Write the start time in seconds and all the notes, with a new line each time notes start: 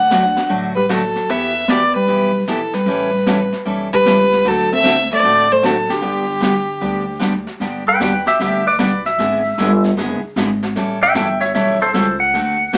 Already playing: D2 D4 F#5
0.11 D3 F#3 A3 D4 F#4, snare, hi-hat pedal
0.37 snare
0.49 A1 D3 F#3 A3 D4 F#4, brush sweep
0.76 G3 B4
0.89 D3 F#3 A3 D4 F#4 A4, snare, hi-hat pedal
1.15 snare
1.29 E2 E3 B3 E4 G4 E5, brush sweep
1.68 E3 B3 E4 G4 D5, snare, hi-hat pedal
1.95 G3 B4
2.08 B1 E3 B3 E4 G4, brush sweep
2.48 E3 B3 E4 G4 A4, snare, hi-hat pedal
2.73 G3 B4, snare
2.86 A1 E3 G3 C#4 E4 A4, brush sweep
3.27 E3 G3 C#4 E4 A4, snare, hi-hat pedal
3.53 snare
3.65 B1 E3 G3 C#4 E4 A4, brush sweep
3.93 G3 B4
4.05 C#2 E3 G3 C#4 E4 A4, snare, hi-hat pedal
4.32 snare
4.45 D2 D3 F#3 A3 C4 F#4 A4, brush sweep
4.72 C4 E5
4.83 D3 A3 C4 F#4 A4, snare, hi-hat pedal
5.11 A3 D5, snare
5.23 A1 D3 A3 C4 F#4 A4, brush sweep
5.52 A3 C5
5.63 D3 F#3 A3 C4 F#4 A4, snare, hi-hat pedal
5.89 D3 G4, snare
6.01 G1 D3 G3 B3 D4 G4, brush sweep
6.40 D3 G3 B3 D4 G4, snare, hi-hat pedal
6.81 D2 D3 G3 B3 D4 G4, brush sweep
7.20 D3 G3 B3 D4 G4, snare, hi-hat pedal
7.47 snare
7.60 G2 D3 G3 B3 D4 G4, brush sweep, snare
7.88 B4 G5
8.00 D#2 D3 G3 B3 D4 G4 B4 G5, snare, hi-hat pedal
8.26 G4 E5, snare
8.39 D2 D3 G3 B3 D4 G4 E5, brush sweep, snare
8.67 B4 D5
8.79 B1 D3 G3 B3 D4 G4 B4 D5, snare, hi-hat pedal
9.05 E5, snare
9.18 G#1 D3 G#3 B3 E4 G#4, brush sweep, snare
9.58 G1 D3 G#3 B3 E4 G#4, snare, hi-hat pedal
9.84 snare
9.97 F#1 D3 G#3 B3 E4 G#4, brush sweep, snare
10.23 muted upright bass stroke
10.36 G#1 D3 G#3 B3 E4 G#4, snare, hi-hat pedal
10.63 snare
10.76 A1 E3 G3 C#4 E4 A4, brush sweep, snare
11.03 E5 G5
11.14 G1 E3 G3 C#4 E4 A4 E5 G5, snare, hi-hat pedal
11.41 C#5 E5, snare
11.55 B1 E3 G3 C#4 E4 A4 C#5 E5, brush sweep, snare
11.82 A4 C5
11.93 C#2 E3 G3 C#4 E4 A4 C5, snare, hi-hat pedal
12.20 F#5
12.34 D2 D3 A3 C4 F#4 A4, brush sweep, snare
12.73 E2 D3 A3 C4 F#4 A4, snare, hi-hat pedal